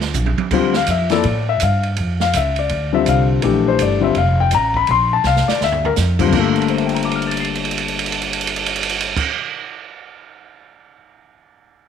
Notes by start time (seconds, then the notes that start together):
Already playing: D2
0.01 snare
0.14 A#1, hi-hat pedal, high tom
0.26 high tom
0.38 muted upright bass stroke, high tom
0.51 D2 D3 G3 C4 F4, kick, crash
0.74 F5, snare
0.86 F2, hi-hat pedal, ride
0.91 E5
1.09 F3 A#3 E4 A4 D5, snare, ride
1.23 A2, ride
1.49 E5
1.60 G2 F5, hi-hat pedal, ride
1.83 ride
1.96 F2, ride
2.20 F5, snare
2.33 C#2 E5, hi-hat pedal, ride
2.56 D5, ride
2.69 D2, ride
2.93 D3 G3 C4 F4 E5
3.06 C2 F5, hi-hat pedal, ride
3.42 A#1 E3 A3 D4 G4, ride
3.68 C5
3.79 G1 D5, hi-hat pedal, ride
4.01 D3 G3 C4 F4 E5
4.15 F1 F5, ride
4.40 G5
4.51 A1 A#5, hi-hat pedal, ride
4.74 B5, kick
4.87 A#1 C6, ride
5.13 A5
5.23 C2 F5, snare, hi-hat pedal
5.36 snare
5.48 D5, snare
5.61 D2 E5, snare
5.72 floor tom
5.85 A#4, floor tom
5.96 F2, snare, hi-hat pedal
6.19 D3 G3 C4 F4, kick, crash
6.27 G2 D3
6.32 G1 A#3 F4, kick, crash
6.39 A3
6.56 crash
6.62 ride
6.68 C5, crash
6.78 E5, ride
6.86 G5, crash
6.95 A#5, ride
7.03 D6, crash
7.11 ride
7.16 F6
7.22 crash
7.27 A6
7.31 ride
7.37 C7, crash
7.45 ride
7.55 crash
7.65 ride
7.71 crash
7.78 ride
7.88 crash
7.99 ride
8.06 crash
8.12 ride
8.22 crash
8.33 ride
8.41 crash
8.47 ride
8.56 crash
8.66 ride
8.76 crash
8.83 ride
8.89 crash
9.00 ride
9.17 kick, crash